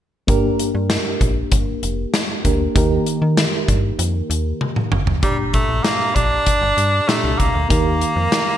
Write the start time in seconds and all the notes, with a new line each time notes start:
0.27 G1 G2 A#3 D4 G4 A#4, kick, closed hi-hat
0.59 closed hi-hat
0.75 G2
0.90 snare, closed hi-hat
1.21 A#1, kick, closed hi-hat
1.52 G1, kick, closed hi-hat
1.83 F1, closed hi-hat
2.14 snare, closed hi-hat
2.44 D2 A#3 D4 G4 A#4, kick, closed hi-hat
2.75 D#2 D#3 A#3 D#4 G4 A#4, kick, closed hi-hat
3.06 closed hi-hat
3.22 D#3
3.37 snare, closed hi-hat
3.68 G2, kick, closed hi-hat
3.99 F2, closed hi-hat
4.30 D#2, closed hi-hat
4.61 high tom
4.76 mid tom
4.92 G1, mid tom
5.07 floor tom
5.22 G1 G2 A#2 G3 D4 G4 A#5, kick, closed hi-hat
5.54 A3, kick, closed hi-hat
5.69 A#1
5.84 A#3, snare, closed hi-hat
6.15 A#1 D4, kick, closed hi-hat
6.46 kick, closed hi-hat
6.62 G1
6.77 G2, closed hi-hat
7.08 A#2 A3 D4 G4 A#5, snare, closed hi-hat
7.24 C2
7.39 C2 A#3, kick, closed hi-hat
7.55 D2
7.69 D#2 D#3 A#3 D#4 G4 A#4, kick, closed hi-hat
8.02 closed hi-hat
8.16 F2
8.32 snare, closed hi-hat